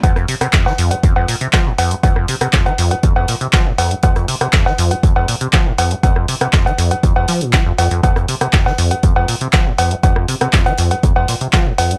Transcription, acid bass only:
\new Staff \with { instrumentName = "Acid bass" } { \clef bass \time 4/4 \key f \minor \tempo 4 = 120 f,16 f,16 c16 c16 f,16 f16 f,16 aes,16 f,16 f,16 bes,16 c16 f16 aes,16 f,16 aes,16 | f,16 f,16 c16 c16 f,16 f16 f,16 aes,16 f,16 f,16 bes,16 c16 f16 aes,16 f,16 aes,16 | f,16 f,16 c16 c16 f,16 f16 f,16 aes,16 f,16 f,16 bes,16 c16 f16 aes,16 f,16 aes,16 | f,16 f,16 c16 c16 f,16 f16 f,16 aes,16 f,16 f,16 f16 bes,16 f16 f,16 f,16 f,16 |
f,16 f,16 c16 c16 f,16 f16 f,16 aes,16 f,16 f,16 bes,16 c16 f16 aes,16 f,16 aes,16 | f,16 f,16 c16 c16 f,16 f16 f,16 aes,16 f,16 f,16 bes,16 c16 f16 aes,16 f,16 aes,16 | }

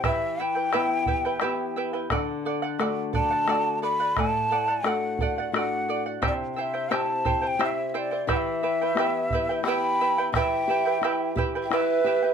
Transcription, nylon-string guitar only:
\new Staff \with { instrumentName = "Nylon-string guitar" } { \time 3/4 \key e \minor \tempo 4 = 88 e4 <b e' g'>4 <b e' g'>4 | d4 <a d' fis'>4 <a d' fis'>4 | a,4 <a d' fis'>4 <a d' fis'>4 | c4 <c' e' g'>4 <c' e' g'>4 |
e4 <b e' g'>4 <b e' g'>4 | e8 g'8 e'8 g'8 e'8 g'8 | }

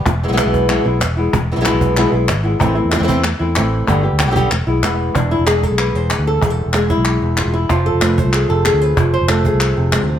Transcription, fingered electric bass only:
\new Staff \with { instrumentName = "Fingered electric bass" } { \clef bass \time 4/4 \tempo 4 = 188 e,,8. b,,8 b,,4~ b,,16 b,,8 e,,4 | e,,8. b,,8 b,,4~ b,,16 b,,8 gis,,4 | a,,8. e,8 e,4~ e,16 e,8 a,,4 | g,,8. d,8 b,,8. e,,8 b,,8 e,,4 |
e,,8. e,,4 b,,8. e,,8. d,8. | e,,8. e,,4 b,,8. e,,8. e,,8. | f,,8. f,,4 c,8. f,,8. d,8. | f,,8. f,,4 c,8. f,,8. d,8. | }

